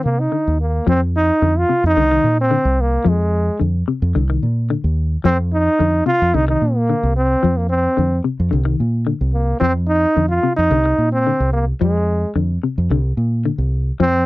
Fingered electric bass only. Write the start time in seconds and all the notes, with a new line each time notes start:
0.05 C3
0.47 D#2
0.87 F2
1.42 F2
1.84 F2
1.97 C2
2.24 A#2
2.65 C2
3.06 F2
3.61 F2
4.02 F2
4.16 C2
4.43 A#2
4.84 D#2
5.25 F2
5.80 F2
6.22 F2
6.34 C2
6.62 A#2
7.03 C2
7.44 F2
7.98 F2
8.40 F2
8.53 C2
8.80 A#2
9.21 C2
9.62 F2
10.17 F2
10.58 F2
10.71 C2
10.98 A#2
11.40 C2
11.81 F2
12.36 F2
12.78 F2
12.90 C2
13.17 A#2
13.58 C2
14.00 F2